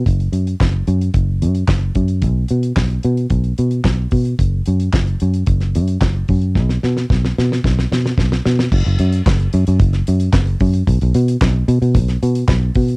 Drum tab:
CC |----------------|----------------|----------------|----------------|
HH |xxxx--xxx-xx--xx|x-xx-xxxxxxx--ox|x-xx-xxxxxxx--ox|----------------|
CP |----x-------x---|----x-------x---|----x-------x---|----------------|
SD |----o-------o---|----o-------o---|----o----o--o---|oooooooooooooooo|
BD |o---o---o---o-o-|o---o---o---o-o-|o---o---o---o-o-|o---o---o---o---|

CC |x---------------|----------------|
HH |--xx-xxxxxxx-xox|xxxx--xxxxxx--ox|
CP |----x-------x---|----x-------x---|
SD |----o----o--o---|----o----o--o---|
BD |o---o---o---o-o-|o---o---o---o-o-|